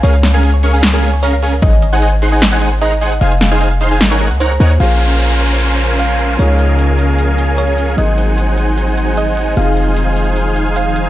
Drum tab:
HH |xxxxxxxx|xxxxxxxx|xxxxxxxx|xxxxxxxx|
SD |-o--o---|----o---|-o--o---|--------|
BD |--------|o-------|--------|--------|

HH |xxxxxxxx|xxxxxxxx|xxxxxxxx|
SD |--------|--------|--------|
BD |--------|--------|--------|